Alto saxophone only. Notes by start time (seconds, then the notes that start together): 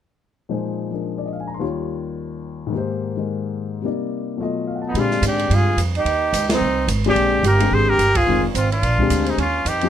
4.88 B3
4.98 D4
5.27 D4
5.54 F4
5.96 D#4
6.53 C4
7.08 D4
7.46 G4
7.74 G#4
7.89 G4
8.17 F4
8.55 C4
8.72 D4
9.26 C4
9.38 C#4
9.67 D#4